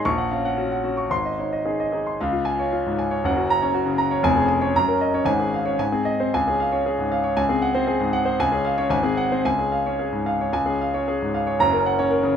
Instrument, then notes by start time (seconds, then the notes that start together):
grand piano
0.05 A#1 C#6
0.18 F#5
0.31 C#4 F5
0.45 F#5
0.57 C#4 F#4
0.72 F#5
0.83 C#4 F#4
0.97 C#6
1.10 G#1 C6
1.26 D#5
1.39 D#4 C#5
1.53 D#5
1.65 D#4 G#4
1.80 D#5
1.92 D#4 G#4
2.07 C6
2.21 C#2 F5
2.33 F4
2.45 G#5
2.59 C#5
2.73 F4
2.86 G#2
2.99 G#5
3.11 C#5
3.24 F#1 F#2 F#5
3.36 C#4 F#4
3.50 A#5
3.62 C#4 C#5
3.74 F#4
3.86 C#3
3.98 A#5
4.11 C#5
4.23 F1 F2 G#5
4.36 C#4 G#4
4.48 G#5
4.61 C#4 C#5
4.76 F#2 A#5
4.88 C#4 A#4
5.01 D#5
5.14 C#4 C#5
5.25 G#1 G#2 G#5
5.40 C#4 G#4
5.54 F5
5.65 C#4 C#5
5.79 G#2 G#5
5.92 C4 G#4
6.05 D#5
6.20 C4 C5
6.34 C#2 G#5
6.48 C#4 G#4
6.60 F5
6.72 C#4 C#5
6.86 G#4
6.98 G#2
7.12 F5
7.24 C#5
7.36 C#2 G#5
7.49 C4 G#4
7.62 F#5
7.75 C4 C5
7.87 G#4
8.00 G#2
8.13 F#5
8.25 C5
8.39 C#2 G#5
8.52 C#4 G#4
8.65 F5
8.78 C#4 C#5
8.90 G#1 G#5
9.03 C4 G#4
9.17 F#5
9.32 C4 C5
9.45 C#2 G#5
9.59 C#4 G#4
9.72 F5
9.86 C#4 C#5
9.99 G#4
10.12 G#2
10.26 F5
10.41 C#5
10.53 C#2 G#5
10.66 C#4 G#4
10.81 F5
10.94 C#4 C#5
11.08 G#4
11.22 G#2
11.34 F5
11.47 C#5
11.59 F#1 F#2 A#5
11.73 C#4 A#4
11.86 F#5
11.99 C#4 C#5
12.11 A#4
12.23 C#3